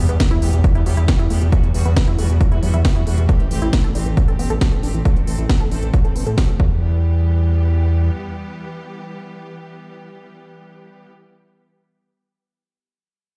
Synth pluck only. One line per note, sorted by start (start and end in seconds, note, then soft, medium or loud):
0.09 0.14 B3 loud
0.20 0.25 E3 medium
0.31 0.36 E4 loud
0.42 0.47 A3 medium
0.53 0.58 B2 medium
0.64 0.69 E2 loud
0.75 0.82 E4 loud
0.86 0.91 F#3 loud
0.97 1.04 E4 loud
1.08 1.13 E3 medium
1.19 1.24 E4 loud
1.30 1.35 A3 medium
1.41 1.46 B2 medium
1.52 1.57 E3 loud
1.63 1.68 B2 medium
1.74 1.81 B2 medium
1.85 1.90 B3 loud
1.97 2.01 E3 medium
2.08 2.12 E4 loud
2.19 2.23 A3 medium
2.30 2.34 B2 medium
2.41 2.45 E2 loud
2.52 2.59 E4 loud
2.63 2.67 F#3 medium
2.74 2.81 E4 loud
2.85 2.89 E3 medium
2.96 3.00 E4 loud
3.07 3.11 A3 medium
3.18 3.23 B2 medium
3.29 3.34 A3 loud
3.40 3.45 E3 medium
3.51 3.58 E3 medium
3.62 3.67 E4 loud
3.73 3.78 A3 medium
3.84 3.89 A4 loud
3.95 4.00 D4 medium
4.06 4.11 E3 medium
4.17 4.22 A2 medium
4.28 4.35 A4 loud
4.39 4.44 B3 medium
4.50 4.57 A4 loud
4.61 4.66 A3 medium
4.72 4.77 A4 medium
4.83 4.88 D4 medium
4.94 4.99 E3 medium
5.05 5.10 A3 loud
5.16 5.21 E3 medium
5.27 5.34 E3 medium
5.38 5.43 E4 medium
5.49 5.54 A3 medium
5.60 5.65 A4 loud
5.72 5.76 D4 medium
5.83 5.87 E3 medium
5.94 5.98 A2 medium
6.05 6.12 A4 loud
6.16 6.20 B3 loud
6.27 6.34 A4 loud
6.38 6.42 A3 medium
6.49 6.53 A4 medium
6.60 7.01 E3 medium